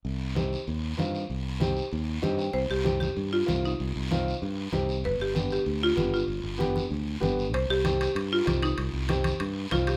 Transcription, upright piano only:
\new Staff \with { instrumentName = "Upright piano" } { \time 4/4 \key c \minor \tempo 4 = 192 r4 <c' ees' g'>8 r4. <c' ees' f'>8 r8 | r4 <c' ees' g'>8 r4. <c' ees' g' ees''>8 g''8 | r4 <c' ees' g'>8 r4. <c' ees' f'>8 r8 | r4 <c' ees' f'>8 r4. <c' ees' g'>8 r8 |
r4 <b d' g'>8 r4. <b d' g'>8 r8 | r4 <b d' g'>8 r4. <b d' g'>8 r8 | r4 <c' ees' g'>8 r4. <c' ees' g'>8 r8 | r4 <c' ees' g'>8 r4. <c' ees' f'>8 r8 | }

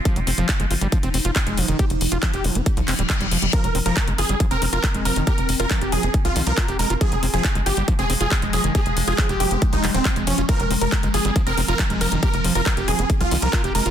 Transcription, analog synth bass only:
\new Staff \with { instrumentName = "Analog synth bass" } { \clef bass \time 4/4 \key f \minor \tempo 4 = 138 r16 f,,16 f,,16 f,,16 r16 g,,16 g,,16 g,,16 r16 f,,16 f,,16 f,,16 r16 f,,16 f,,16 f,,16 | r16 f,,16 f,,16 f,,16 r16 f,,16 f,,16 f,,16 r16 c,16 f,,16 ees,,16 r16 f,,16 f,,16 f,,16 | r16 f,,16 f,,16 f,,16 r16 g,,16 g,,16 g,,16 r16 f,,16 f,,16 f,,16 r16 f,,16 f,,16 f,,16 | r16 f,,16 f,,16 f,,16 r16 f,,16 f,,16 f,,16 r16 c,16 c,16 c,16 r16 f,,16 f,,16 f,,16 |
r16 f,,16 f,,16 f,,16 r16 g,,16 g,,16 g,,16 r16 f,,16 f,,16 f,,16 r16 f,,16 f,,16 f,,16 | r16 f,,16 f,,16 f,,16 r16 f,,16 f,,16 f,,16 r16 c,16 f,,16 ees,,16 r16 f,,16 f,,16 f,,16 | r16 f,,16 f,,16 f,,16 r16 g,,16 g,,16 g,,16 r16 f,,16 f,,16 f,,16 r16 f,,16 f,,16 f,,16 | r16 f,,16 f,,16 f,,16 r16 f,,16 f,,16 f,,16 r16 c,16 c,16 c,16 r16 f,,16 f,,16 f,,16 | }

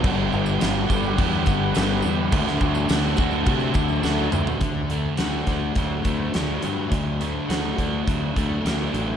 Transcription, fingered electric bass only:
\new Staff \with { instrumentName = "Fingered electric bass" } { \clef bass \time 4/4 \key d \major \tempo 4 = 104 g,,8 g,,8 g,,8 g,,8 e,8 g,,8 g,,8 e,8 | d,8 d,8 d,8 d,8 c8 d,8 d,8 d,8 | d,4 d,8 d,8 d,8 d,8 d,8 g,8 | d,4 d,8 d,8 d,8 d,8 d,8 a,,8 | }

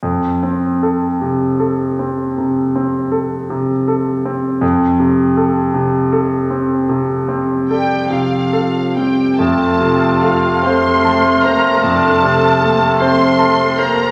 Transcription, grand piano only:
\new Staff \with { instrumentName = "Grand piano" } { \time 12/8 \key f \major \tempo 4. = 52 f,8 c'8 a'8 c8 a'8 c'8 c8 c'8 a'8 c8 a'8 c'8 | f,8 c8 a'8 c8 a'8 c'8 c8 c'8 a'8 c8 a'8 c'8 | f,8 c8 a'8 c''8 a''8 c''8 f,8 c8 a'8 c''8 a''8 c''8 | }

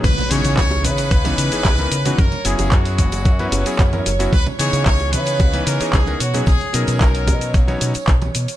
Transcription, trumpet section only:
\new Staff \with { instrumentName = "Trumpet section" } { \time 4/4 \key cis \dorian \tempo 4 = 112 b'8 cis''8 cis''8 b'2~ b'8 | ais'8 gis'8 fis'2~ fis'8 r8 | b'8 cis''8 cis''8 b'4 ais'8 gis'8 fis'8 | gis'4 ais'4 r2 | }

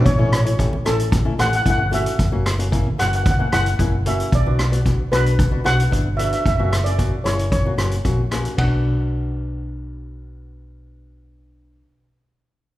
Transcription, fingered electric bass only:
\new Staff \with { instrumentName = "Fingered electric bass" } { \clef bass \time 4/4 \key b \minor \tempo 4 = 113 a,,16 a,,4~ a,,16 a,,4 a,,8 g,,4 | fis,,16 fis,,4~ fis,,16 fis,,4 fis,,8 fis,,4 | b,,16 b,,4~ b,,16 b,,4 b,,8 g,,4 | fis,,16 fis,,4~ fis,,16 fis,,4 fis,,8 ais,,4 |
b,,1~ | b,,1 | }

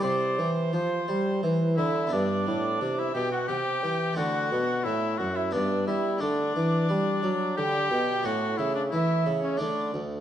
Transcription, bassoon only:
\new Staff \with { instrumentName = "Bassoon" } { \clef bass \time 3/4 \key c \major \tempo 4 = 88 c8 e8 f8 g8 e8 d8 | \key g \major g,8 a,8 c8 b,8 c8 e8 | d8 b,8 a,8 fis,8 g,8 g8 | d8 e8 g8 fis8 d8 b,8 |
a,8 cis8 e8 cis8 d8 d,8 | }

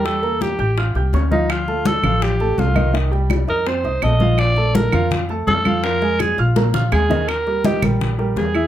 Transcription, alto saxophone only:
\new Staff \with { instrumentName = "Alto saxophone" } { \time 4/4 \key bes \major \tempo 4 = 166 a'4 g'4 r4. ees'8 | f'4 a'4 g'4 f'4 | r4. bes'8 c''4 ees''4 | d''4 bes'4 r4 a'4 |
bes'4 aes'8 r4. aes'4 | bes'4 g'8 r4. aes'4 | }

